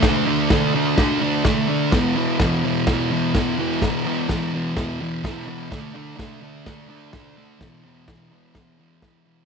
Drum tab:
CC |x-x-x-x-|x-x-x-x-|x-x-x-x-|x-x-x-x-|
SD |o-o-o-o-|o-o-o-o-|o-o-o-o-|o-o-o-o-|
BD |o-o-o-o-|o-o-o-o-|o-o-o-o-|o-o-o-o-|

CC |x-x-x-x-|
SD |o-o-o-o-|
BD |o-o-o-o-|